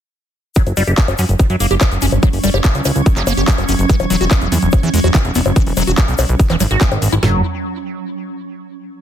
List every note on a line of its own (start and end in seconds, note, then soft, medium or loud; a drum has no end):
0.56 0.62 F#3 medium
0.56 7.27 F#3 medium
0.56 7.27 C#4 medium
0.56 kick loud
0.56 closed hi-hat loud
0.56 shaker medium
0.67 0.73 F#1 medium
0.67 closed hi-hat soft
0.67 high bongo soft
0.67 shaker soft
0.77 0.83 F#1 loud
0.77 0.83 G3 loud
0.77 open hi-hat loud
0.77 shaker medium
0.87 0.93 F#1 medium
0.87 0.92 G4 medium
0.87 closed hi-hat soft
0.87 shaker soft
0.98 kick loud
0.98 clap loud
0.98 closed hi-hat loud
0.98 shaker soft
1.08 1.14 F#1 medium
1.08 closed hi-hat soft
1.08 high bongo medium
1.08 shaker soft
1.18 1.25 F#2 loud
1.18 1.21 C#4 medium
1.18 open hi-hat loud
1.18 shaker medium
1.29 1.35 F#1 medium
1.29 closed hi-hat soft
1.29 shaker soft
1.39 kick loud
1.39 closed hi-hat loud
1.39 high bongo soft
1.39 shaker medium
1.50 1.56 F#2 medium
1.50 1.56 F#3 medium
1.50 closed hi-hat soft
1.50 shaker soft
1.60 1.66 F#1 loud
1.60 1.67 A#3 medium
1.60 open hi-hat loud
1.60 shaker medium
1.71 1.77 F#1 medium
1.71 1.75 G4 medium
1.71 closed hi-hat soft
1.71 shaker soft
1.81 1.85 F3 loud
1.81 kick loud
1.81 clap loud
1.81 closed hi-hat loud
1.81 high bongo medium
1.81 shaker medium
1.92 1.98 F#1 medium
1.92 closed hi-hat soft
1.92 shaker soft
2.02 2.08 F#1 loud
2.02 2.06 C#4 medium
2.02 open hi-hat loud
2.02 shaker loud
2.12 2.18 G1 medium
2.12 closed hi-hat soft
2.12 high bongo soft
2.12 shaker soft
2.23 2.29 F#3 medium
2.23 kick loud
2.23 closed hi-hat loud
2.23 shaker medium
2.33 2.39 F#1 medium
2.33 open hi-hat medium
2.33 shaker soft
2.44 2.50 F#1 loud
2.44 2.50 G3 loud
2.44 open hi-hat loud
2.44 shaker loud
2.54 2.60 F#1 medium
2.54 2.58 G4 medium
2.54 closed hi-hat soft
2.54 high bongo medium
2.54 shaker soft
2.64 kick loud
2.64 clap loud
2.64 closed hi-hat medium
2.64 shaker medium
2.74 2.81 C#2 medium
2.74 closed hi-hat soft
2.74 shaker soft
2.85 2.91 C#2 loud
2.85 2.88 C#4 medium
2.85 open hi-hat loud
2.85 high bongo soft
2.85 shaker medium
2.96 3.02 C#2 medium
2.96 closed hi-hat soft
2.96 shaker soft
3.06 kick loud
3.06 closed hi-hat medium
3.06 shaker medium
3.16 3.23 F#1 medium
3.16 3.23 F#3 medium
3.16 clap soft
3.16 closed hi-hat soft
3.16 shaker soft
3.27 3.33 F#1 medium
3.27 3.33 A#3 medium
3.27 open hi-hat loud
3.27 high bongo medium
3.27 shaker medium
3.37 3.43 F#1 medium
3.37 3.42 G4 medium
3.37 closed hi-hat soft
3.37 shaker soft
3.48 3.52 F3 loud
3.48 kick loud
3.48 clap loud
3.48 closed hi-hat medium
3.48 shaker medium
3.58 3.64 F#1 medium
3.58 closed hi-hat soft
3.58 high bongo soft
3.58 shaker soft
3.69 3.75 F#1 loud
3.69 3.73 C#4 medium
3.69 open hi-hat loud
3.69 shaker medium
3.79 3.85 F#1 medium
3.79 closed hi-hat soft
3.79 shaker soft
3.89 3.96 E3 medium
3.89 kick loud
3.89 closed hi-hat medium
3.89 shaker soft
3.99 4.06 E1 medium
3.99 closed hi-hat soft
3.99 high bongo medium
3.99 shaker soft
4.10 4.16 E1 loud
4.10 4.17 F#3 loud
4.10 open hi-hat loud
4.10 shaker medium
4.21 4.27 E1 loud
4.21 4.25 F#4 medium
4.21 closed hi-hat soft
4.21 shaker soft
4.31 kick loud
4.31 clap loud
4.31 closed hi-hat medium
4.31 high bongo soft
4.31 shaker medium
4.41 4.48 E1 medium
4.41 closed hi-hat soft
4.41 shaker soft
4.52 4.58 E2 loud
4.52 4.54 B3 medium
4.52 open hi-hat loud
4.52 shaker medium
4.62 4.68 E1 medium
4.62 closed hi-hat soft
4.62 shaker soft
4.72 kick loud
4.72 closed hi-hat medium
4.72 high bongo medium
4.72 shaker medium
4.83 4.89 E2 medium
4.83 4.89 E3 medium
4.83 closed hi-hat soft
4.83 shaker soft
4.94 5.00 E1 medium
4.94 5.00 G#3 medium
4.94 open hi-hat loud
4.94 shaker loud
5.04 5.10 E1 medium
5.04 5.08 F#4 medium
5.04 closed hi-hat soft
5.04 high bongo soft
5.04 shaker soft
5.14 5.19 D#3 loud
5.14 kick loud
5.14 clap loud
5.14 closed hi-hat medium
5.14 shaker medium
5.24 5.31 E1 medium
5.24 closed hi-hat soft
5.24 shaker soft
5.35 5.41 E1 loud
5.35 5.40 B3 medium
5.35 open hi-hat loud
5.35 shaker medium
5.45 5.52 F#1 medium
5.45 closed hi-hat soft
5.45 high bongo medium
5.45 shaker soft
5.56 5.62 E3 medium
5.56 kick loud
5.56 closed hi-hat medium
5.56 shaker medium
5.67 5.73 E1 medium
5.67 open hi-hat medium
5.67 shaker soft
5.77 5.83 E1 loud
5.77 5.83 F#3 loud
5.77 open hi-hat loud
5.77 high bongo soft
5.77 shaker loud
5.87 5.93 E1 medium
5.87 5.92 F#4 medium
5.87 closed hi-hat soft
5.87 shaker soft
5.98 kick loud
5.98 clap loud
5.98 closed hi-hat medium
5.98 shaker medium
6.08 6.14 B1 medium
6.08 closed hi-hat soft
6.08 shaker soft
6.18 6.25 B1 loud
6.18 6.21 B3 medium
6.18 open hi-hat loud
6.18 high bongo medium
6.18 shaker loud
6.29 6.35 B1 medium
6.29 closed hi-hat soft
6.29 shaker soft
6.39 kick loud
6.39 closed hi-hat medium
6.39 shaker medium
6.50 6.56 E1 medium
6.50 6.56 E3 medium
6.50 clap soft
6.50 closed hi-hat soft
6.50 high bongo soft
6.50 shaker soft
6.60 6.66 G#1 medium
6.60 6.63 F#3 loud
6.60 open hi-hat loud
6.60 shaker loud
6.70 6.77 G#1 medium
6.70 6.83 F#4 medium
6.70 closed hi-hat soft
6.70 shaker soft
6.81 7.04 D#3 medium
6.81 kick loud
6.81 clap loud
6.81 closed hi-hat medium
6.81 shaker soft
6.92 6.98 G#1 medium
6.92 closed hi-hat soft
6.92 high bongo medium
6.92 shaker soft
7.02 7.08 G#1 loud
7.02 7.05 E3 medium
7.02 open hi-hat loud
7.02 shaker medium
7.12 7.18 G#1 medium
7.12 7.15 E4 loud
7.12 closed hi-hat soft
7.12 shaker soft
7.23 7.42 F#1 loud
7.23 7.42 F#3 loud
7.23 snare loud
7.23 floor tom loud